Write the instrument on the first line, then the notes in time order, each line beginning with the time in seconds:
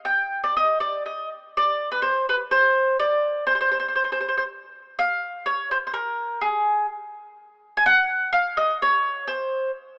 mandolin
0.05 G5
0.44 D5
0.57 D#5
0.80 D5
1.06 D#5
1.57 D5
1.91 B4
2.02 C5
2.29 B4
2.51 C5
2.99 D5
3.47 C5
3.55 C5
3.61 C5
3.71 C5
3.80 C5
3.88 C5
3.95 C5
4.04 C5
4.12 C5
4.21 C5
4.28 C5
4.37 C5
4.99 F5
5.46 C#5
5.71 C5
5.87 C5
5.94 A#4
6.41 G#4
7.77 G#5
7.86 F#5
8.33 F5
8.57 D#5
8.82 C#5
9.27 C5